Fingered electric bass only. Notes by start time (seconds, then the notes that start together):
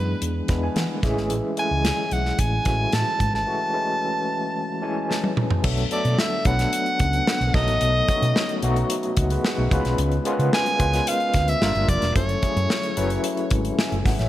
Already playing: F#2
0.22 E2
0.49 E2
0.76 E3
1.03 A1
1.17 G#1
1.30 A1
1.71 C#2
2.12 B1
2.39 A1
2.66 A1
2.93 A2
3.20 G#2
3.34 G#1
5.64 B1
6.05 B2
6.45 B1
7.00 C#2
7.41 B1
7.54 B1
7.68 A1
7.81 B1
8.22 B2
8.63 B1
9.17 C#2
9.58 B1
9.71 C#2
9.85 B1
9.99 C#2
10.39 C#3
10.80 C#2
11.35 D2
11.61 G1
11.75 G1
11.89 F1
12.02 E1
12.16 F#1
12.56 F#2
12.97 F#1
13.51 G#1
13.92 F#1
14.06 G#1
14.19 A1